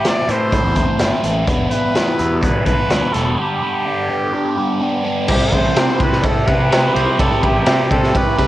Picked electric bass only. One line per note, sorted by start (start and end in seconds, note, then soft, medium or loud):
0.29 0.59 A2 medium
0.64 0.85 E2 medium
1.00 1.10 G1 medium
1.24 1.44 A1 medium
1.47 1.67 E1 medium
2.20 2.50 E2 medium
2.54 2.75 B1 medium
2.90 3.01 D2 medium
3.15 3.35 E1 medium
5.29 5.39 C2 medium
5.52 5.73 A1 loud
5.77 5.87 C3 medium
6.00 6.20 C3 loud
6.48 6.88 C3 medium
6.96 7.06 C2 medium
7.19 7.29 C2 medium
7.43 7.63 A1 medium
7.67 7.77 C3 medium
7.91 8.11 C3 loud
8.39 8.47 C3 medium